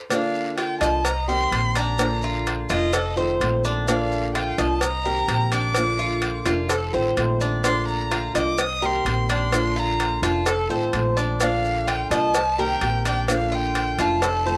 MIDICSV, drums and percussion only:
0, 0, Header, 1, 2, 480
1, 0, Start_track
1, 0, Key_signature, -2, "major"
1, 0, Tempo, 470588
1, 111, Time_signature, 4, 2, 24, 8
1, 14864, End_track
2, 0, Start_track
2, 0, Title_t, "Drums"
2, 106, Note_on_c, 9, 56, 114
2, 113, Note_on_c, 9, 74, 74
2, 114, Note_on_c, 9, 70, 89
2, 208, Note_off_c, 9, 56, 0
2, 215, Note_off_c, 9, 74, 0
2, 216, Note_off_c, 9, 70, 0
2, 354, Note_on_c, 9, 70, 28
2, 456, Note_off_c, 9, 70, 0
2, 587, Note_on_c, 9, 56, 70
2, 597, Note_on_c, 9, 73, 75
2, 602, Note_on_c, 9, 70, 28
2, 689, Note_off_c, 9, 56, 0
2, 699, Note_off_c, 9, 73, 0
2, 704, Note_off_c, 9, 70, 0
2, 824, Note_on_c, 9, 56, 74
2, 837, Note_on_c, 9, 73, 71
2, 840, Note_on_c, 9, 70, 75
2, 926, Note_off_c, 9, 56, 0
2, 939, Note_off_c, 9, 73, 0
2, 942, Note_off_c, 9, 70, 0
2, 1068, Note_on_c, 9, 56, 106
2, 1076, Note_on_c, 9, 70, 84
2, 1084, Note_on_c, 9, 74, 69
2, 1170, Note_off_c, 9, 56, 0
2, 1178, Note_off_c, 9, 70, 0
2, 1186, Note_off_c, 9, 74, 0
2, 1316, Note_on_c, 9, 70, 29
2, 1418, Note_off_c, 9, 70, 0
2, 1554, Note_on_c, 9, 56, 75
2, 1555, Note_on_c, 9, 70, 31
2, 1562, Note_on_c, 9, 73, 67
2, 1656, Note_off_c, 9, 56, 0
2, 1657, Note_off_c, 9, 70, 0
2, 1664, Note_off_c, 9, 73, 0
2, 1790, Note_on_c, 9, 56, 73
2, 1792, Note_on_c, 9, 70, 73
2, 1805, Note_on_c, 9, 73, 73
2, 1892, Note_off_c, 9, 56, 0
2, 1894, Note_off_c, 9, 70, 0
2, 1907, Note_off_c, 9, 73, 0
2, 2027, Note_on_c, 9, 70, 85
2, 2032, Note_on_c, 9, 56, 107
2, 2042, Note_on_c, 9, 74, 74
2, 2129, Note_off_c, 9, 70, 0
2, 2134, Note_off_c, 9, 56, 0
2, 2144, Note_off_c, 9, 74, 0
2, 2264, Note_on_c, 9, 70, 30
2, 2366, Note_off_c, 9, 70, 0
2, 2514, Note_on_c, 9, 70, 29
2, 2519, Note_on_c, 9, 56, 73
2, 2522, Note_on_c, 9, 73, 70
2, 2616, Note_off_c, 9, 70, 0
2, 2621, Note_off_c, 9, 56, 0
2, 2624, Note_off_c, 9, 73, 0
2, 2747, Note_on_c, 9, 70, 70
2, 2755, Note_on_c, 9, 56, 70
2, 2759, Note_on_c, 9, 73, 70
2, 2849, Note_off_c, 9, 70, 0
2, 2857, Note_off_c, 9, 56, 0
2, 2861, Note_off_c, 9, 73, 0
2, 2989, Note_on_c, 9, 70, 86
2, 2992, Note_on_c, 9, 56, 113
2, 2993, Note_on_c, 9, 74, 67
2, 3091, Note_off_c, 9, 70, 0
2, 3094, Note_off_c, 9, 56, 0
2, 3095, Note_off_c, 9, 74, 0
2, 3229, Note_on_c, 9, 70, 29
2, 3331, Note_off_c, 9, 70, 0
2, 3476, Note_on_c, 9, 70, 28
2, 3480, Note_on_c, 9, 56, 74
2, 3483, Note_on_c, 9, 73, 76
2, 3578, Note_off_c, 9, 70, 0
2, 3582, Note_off_c, 9, 56, 0
2, 3585, Note_off_c, 9, 73, 0
2, 3715, Note_on_c, 9, 70, 70
2, 3722, Note_on_c, 9, 73, 73
2, 3817, Note_off_c, 9, 70, 0
2, 3824, Note_off_c, 9, 73, 0
2, 3957, Note_on_c, 9, 70, 88
2, 3961, Note_on_c, 9, 56, 113
2, 3963, Note_on_c, 9, 74, 71
2, 4060, Note_off_c, 9, 70, 0
2, 4063, Note_off_c, 9, 56, 0
2, 4065, Note_off_c, 9, 74, 0
2, 4202, Note_on_c, 9, 70, 30
2, 4304, Note_off_c, 9, 70, 0
2, 4438, Note_on_c, 9, 56, 74
2, 4439, Note_on_c, 9, 73, 72
2, 4445, Note_on_c, 9, 70, 29
2, 4540, Note_off_c, 9, 56, 0
2, 4541, Note_off_c, 9, 73, 0
2, 4547, Note_off_c, 9, 70, 0
2, 4675, Note_on_c, 9, 56, 67
2, 4677, Note_on_c, 9, 70, 73
2, 4683, Note_on_c, 9, 73, 70
2, 4777, Note_off_c, 9, 56, 0
2, 4779, Note_off_c, 9, 70, 0
2, 4785, Note_off_c, 9, 73, 0
2, 4906, Note_on_c, 9, 56, 102
2, 4918, Note_on_c, 9, 70, 89
2, 4923, Note_on_c, 9, 74, 73
2, 5008, Note_off_c, 9, 56, 0
2, 5020, Note_off_c, 9, 70, 0
2, 5025, Note_off_c, 9, 74, 0
2, 5159, Note_on_c, 9, 70, 30
2, 5261, Note_off_c, 9, 70, 0
2, 5391, Note_on_c, 9, 56, 73
2, 5395, Note_on_c, 9, 73, 72
2, 5396, Note_on_c, 9, 70, 29
2, 5493, Note_off_c, 9, 56, 0
2, 5497, Note_off_c, 9, 73, 0
2, 5498, Note_off_c, 9, 70, 0
2, 5627, Note_on_c, 9, 56, 70
2, 5634, Note_on_c, 9, 70, 68
2, 5637, Note_on_c, 9, 73, 68
2, 5729, Note_off_c, 9, 56, 0
2, 5736, Note_off_c, 9, 70, 0
2, 5739, Note_off_c, 9, 73, 0
2, 5860, Note_on_c, 9, 56, 106
2, 5871, Note_on_c, 9, 70, 86
2, 5876, Note_on_c, 9, 74, 73
2, 5962, Note_off_c, 9, 56, 0
2, 5973, Note_off_c, 9, 70, 0
2, 5978, Note_off_c, 9, 74, 0
2, 6107, Note_on_c, 9, 70, 31
2, 6209, Note_off_c, 9, 70, 0
2, 6341, Note_on_c, 9, 56, 74
2, 6348, Note_on_c, 9, 70, 27
2, 6348, Note_on_c, 9, 73, 72
2, 6443, Note_off_c, 9, 56, 0
2, 6450, Note_off_c, 9, 70, 0
2, 6450, Note_off_c, 9, 73, 0
2, 6584, Note_on_c, 9, 56, 70
2, 6587, Note_on_c, 9, 70, 75
2, 6587, Note_on_c, 9, 73, 70
2, 6686, Note_off_c, 9, 56, 0
2, 6689, Note_off_c, 9, 70, 0
2, 6689, Note_off_c, 9, 73, 0
2, 6828, Note_on_c, 9, 56, 104
2, 6828, Note_on_c, 9, 70, 87
2, 6833, Note_on_c, 9, 74, 67
2, 6930, Note_off_c, 9, 56, 0
2, 6930, Note_off_c, 9, 70, 0
2, 6935, Note_off_c, 9, 74, 0
2, 7071, Note_on_c, 9, 70, 29
2, 7173, Note_off_c, 9, 70, 0
2, 7311, Note_on_c, 9, 73, 69
2, 7313, Note_on_c, 9, 70, 30
2, 7315, Note_on_c, 9, 56, 75
2, 7413, Note_off_c, 9, 73, 0
2, 7415, Note_off_c, 9, 70, 0
2, 7417, Note_off_c, 9, 56, 0
2, 7552, Note_on_c, 9, 73, 69
2, 7554, Note_on_c, 9, 70, 69
2, 7654, Note_off_c, 9, 73, 0
2, 7656, Note_off_c, 9, 70, 0
2, 7793, Note_on_c, 9, 56, 113
2, 7796, Note_on_c, 9, 70, 92
2, 7801, Note_on_c, 9, 74, 71
2, 7895, Note_off_c, 9, 56, 0
2, 7898, Note_off_c, 9, 70, 0
2, 7903, Note_off_c, 9, 74, 0
2, 8037, Note_on_c, 9, 70, 30
2, 8139, Note_off_c, 9, 70, 0
2, 8278, Note_on_c, 9, 56, 71
2, 8281, Note_on_c, 9, 70, 29
2, 8282, Note_on_c, 9, 73, 74
2, 8380, Note_off_c, 9, 56, 0
2, 8383, Note_off_c, 9, 70, 0
2, 8384, Note_off_c, 9, 73, 0
2, 8518, Note_on_c, 9, 56, 72
2, 8521, Note_on_c, 9, 70, 77
2, 8523, Note_on_c, 9, 73, 68
2, 8620, Note_off_c, 9, 56, 0
2, 8623, Note_off_c, 9, 70, 0
2, 8625, Note_off_c, 9, 73, 0
2, 8753, Note_on_c, 9, 70, 89
2, 8757, Note_on_c, 9, 56, 108
2, 8855, Note_off_c, 9, 70, 0
2, 8859, Note_off_c, 9, 56, 0
2, 9002, Note_on_c, 9, 70, 30
2, 9104, Note_off_c, 9, 70, 0
2, 9241, Note_on_c, 9, 56, 73
2, 9243, Note_on_c, 9, 70, 29
2, 9245, Note_on_c, 9, 73, 72
2, 9343, Note_off_c, 9, 56, 0
2, 9345, Note_off_c, 9, 70, 0
2, 9347, Note_off_c, 9, 73, 0
2, 9479, Note_on_c, 9, 70, 66
2, 9483, Note_on_c, 9, 56, 72
2, 9484, Note_on_c, 9, 73, 70
2, 9581, Note_off_c, 9, 70, 0
2, 9585, Note_off_c, 9, 56, 0
2, 9586, Note_off_c, 9, 73, 0
2, 9715, Note_on_c, 9, 56, 113
2, 9721, Note_on_c, 9, 74, 75
2, 9724, Note_on_c, 9, 70, 87
2, 9817, Note_off_c, 9, 56, 0
2, 9823, Note_off_c, 9, 74, 0
2, 9826, Note_off_c, 9, 70, 0
2, 9969, Note_on_c, 9, 70, 29
2, 10071, Note_off_c, 9, 70, 0
2, 10198, Note_on_c, 9, 56, 73
2, 10204, Note_on_c, 9, 70, 29
2, 10204, Note_on_c, 9, 73, 71
2, 10300, Note_off_c, 9, 56, 0
2, 10306, Note_off_c, 9, 70, 0
2, 10306, Note_off_c, 9, 73, 0
2, 10434, Note_on_c, 9, 56, 71
2, 10440, Note_on_c, 9, 70, 70
2, 10442, Note_on_c, 9, 73, 75
2, 10536, Note_off_c, 9, 56, 0
2, 10542, Note_off_c, 9, 70, 0
2, 10544, Note_off_c, 9, 73, 0
2, 10671, Note_on_c, 9, 56, 107
2, 10671, Note_on_c, 9, 70, 89
2, 10773, Note_off_c, 9, 56, 0
2, 10773, Note_off_c, 9, 70, 0
2, 10916, Note_on_c, 9, 70, 30
2, 11018, Note_off_c, 9, 70, 0
2, 11151, Note_on_c, 9, 56, 70
2, 11158, Note_on_c, 9, 70, 29
2, 11163, Note_on_c, 9, 73, 70
2, 11253, Note_off_c, 9, 56, 0
2, 11260, Note_off_c, 9, 70, 0
2, 11265, Note_off_c, 9, 73, 0
2, 11398, Note_on_c, 9, 73, 68
2, 11400, Note_on_c, 9, 70, 72
2, 11500, Note_off_c, 9, 73, 0
2, 11502, Note_off_c, 9, 70, 0
2, 11632, Note_on_c, 9, 70, 92
2, 11633, Note_on_c, 9, 56, 109
2, 11644, Note_on_c, 9, 74, 75
2, 11734, Note_off_c, 9, 70, 0
2, 11735, Note_off_c, 9, 56, 0
2, 11746, Note_off_c, 9, 74, 0
2, 11883, Note_on_c, 9, 70, 31
2, 11985, Note_off_c, 9, 70, 0
2, 12117, Note_on_c, 9, 73, 73
2, 12119, Note_on_c, 9, 56, 73
2, 12120, Note_on_c, 9, 70, 30
2, 12219, Note_off_c, 9, 73, 0
2, 12221, Note_off_c, 9, 56, 0
2, 12222, Note_off_c, 9, 70, 0
2, 12355, Note_on_c, 9, 56, 71
2, 12359, Note_on_c, 9, 70, 73
2, 12361, Note_on_c, 9, 73, 72
2, 12457, Note_off_c, 9, 56, 0
2, 12461, Note_off_c, 9, 70, 0
2, 12463, Note_off_c, 9, 73, 0
2, 12591, Note_on_c, 9, 70, 89
2, 12593, Note_on_c, 9, 56, 110
2, 12599, Note_on_c, 9, 74, 71
2, 12693, Note_off_c, 9, 70, 0
2, 12695, Note_off_c, 9, 56, 0
2, 12701, Note_off_c, 9, 74, 0
2, 12840, Note_on_c, 9, 70, 31
2, 12942, Note_off_c, 9, 70, 0
2, 13070, Note_on_c, 9, 56, 75
2, 13076, Note_on_c, 9, 70, 29
2, 13080, Note_on_c, 9, 73, 69
2, 13172, Note_off_c, 9, 56, 0
2, 13178, Note_off_c, 9, 70, 0
2, 13182, Note_off_c, 9, 73, 0
2, 13314, Note_on_c, 9, 73, 68
2, 13316, Note_on_c, 9, 56, 74
2, 13320, Note_on_c, 9, 70, 71
2, 13416, Note_off_c, 9, 73, 0
2, 13418, Note_off_c, 9, 56, 0
2, 13422, Note_off_c, 9, 70, 0
2, 13549, Note_on_c, 9, 56, 115
2, 13558, Note_on_c, 9, 70, 85
2, 13559, Note_on_c, 9, 74, 75
2, 13651, Note_off_c, 9, 56, 0
2, 13660, Note_off_c, 9, 70, 0
2, 13661, Note_off_c, 9, 74, 0
2, 13795, Note_on_c, 9, 70, 30
2, 13897, Note_off_c, 9, 70, 0
2, 14028, Note_on_c, 9, 56, 75
2, 14036, Note_on_c, 9, 70, 30
2, 14036, Note_on_c, 9, 73, 70
2, 14130, Note_off_c, 9, 56, 0
2, 14138, Note_off_c, 9, 70, 0
2, 14138, Note_off_c, 9, 73, 0
2, 14266, Note_on_c, 9, 56, 67
2, 14273, Note_on_c, 9, 70, 74
2, 14274, Note_on_c, 9, 73, 74
2, 14368, Note_off_c, 9, 56, 0
2, 14375, Note_off_c, 9, 70, 0
2, 14376, Note_off_c, 9, 73, 0
2, 14505, Note_on_c, 9, 56, 111
2, 14509, Note_on_c, 9, 74, 73
2, 14515, Note_on_c, 9, 70, 88
2, 14607, Note_off_c, 9, 56, 0
2, 14611, Note_off_c, 9, 74, 0
2, 14617, Note_off_c, 9, 70, 0
2, 14761, Note_on_c, 9, 70, 30
2, 14863, Note_off_c, 9, 70, 0
2, 14864, End_track
0, 0, End_of_file